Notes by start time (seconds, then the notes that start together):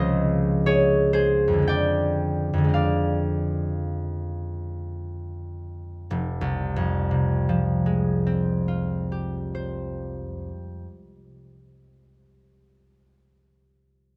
Already playing: C#2 C#3 F3 C4 G#4 C5 C#5 D#5 F5
0.66 G#4 C#5
1.13 G#4 C5
1.48 F2
1.53 D3
1.58 G#3
1.62 C4
1.68 D5 G5
2.53 F2
2.58 D3
2.64 G#3
2.69 C4
2.74 D5 F5
6.11 F1
6.41 C2
6.76 F2
7.11 C3
7.49 F3
7.86 G#3
8.27 C4
8.68 F4
9.12 G4
9.55 C5